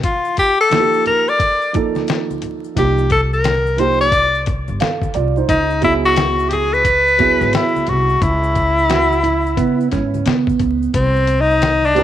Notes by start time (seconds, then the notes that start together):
0.03 F4, kick, closed hi-hat, maracas
0.25 maracas
0.37 G4, kick, closed hi-hat, maracas
0.60 A4, maracas
0.70 F3 A#3 D#4 F4, snare, closed hi-hat, high conga, maracas
0.80 G4
0.93 maracas
1.06 A#4, closed hi-hat, low conga, maracas
1.28 D5, maracas
1.40 kick, closed hi-hat, maracas
1.62 maracas
1.73 F3 A#3 D#4 A4, kick, closed hi-hat, low conga, maracas
1.95 snare, high conga, maracas
2.08 snare, closed hi-hat, maracas
2.31 high conga, maracas
2.42 closed hi-hat, low conga, maracas
2.64 maracas
2.75 C2 F3 A#3 D#4 G4, kick, closed hi-hat, maracas
2.98 maracas
3.10 A4, kick, closed hi-hat, maracas
3.33 A#4, maracas
3.44 snare, closed hi-hat, high conga, maracas
3.66 maracas
3.77 F3 A#3 D#4 G4 C5, closed hi-hat, low conga, maracas
4.01 D5, maracas
4.12 kick, closed hi-hat, maracas
4.35 maracas
4.46 kick, closed hi-hat, low conga, maracas
4.68 G1, high conga, maracas
4.80 A4 F5, snare, closed hi-hat, maracas
5.01 kick, high conga, maracas
5.14 C2 F4 D5, closed hi-hat, low conga, maracas
5.37 D#4 C5, maracas
5.49 C#2 D#4, kick, closed hi-hat, maracas
5.70 maracas
5.81 F#3 B3 E4 G#4, kick, closed hi-hat, maracas
6.05 F#4, maracas
6.16 snare, closed hi-hat, high conga, maracas
6.39 maracas
6.49 G4 G#4, closed hi-hat, low conga, maracas
6.73 B4, maracas
6.85 kick, closed hi-hat, maracas
7.07 maracas
7.18 F#3 B3 E4 G#4, kick, closed hi-hat, low conga, maracas
7.41 G#1, snare, high conga, maracas
7.53 E4, snare, closed hi-hat, maracas
7.76 high conga, maracas
7.87 C2 F#4, closed hi-hat, low conga, maracas
8.09 maracas
8.22 C#2 E4, kick, closed hi-hat, maracas
8.43 maracas
8.55 kick, closed hi-hat, maracas
8.78 maracas
8.89 F#4, snare, closed hi-hat, high conga, maracas
9.12 maracas
9.23 E4, closed hi-hat, low conga, maracas
9.46 maracas
9.57 C#3 B3, kick, closed hi-hat, maracas
9.81 maracas
9.92 G#2 C#4, kick, snare, closed hi-hat, low conga, maracas
10.14 high conga, maracas
10.26 C#3 B3, snare, closed hi-hat, maracas
10.47 kick, high conga, maracas
10.59 C#2, kick, closed hi-hat, low conga, maracas
10.83 maracas
10.94 C2 C4, kick, closed hi-hat, maracas
11.16 maracas
11.27 closed hi-hat, maracas
11.41 D#4
11.51 maracas
11.62 snare, closed hi-hat, high conga, maracas
11.85 D4, maracas
11.94 G3 C4 F4 A#4, closed hi-hat, low conga, maracas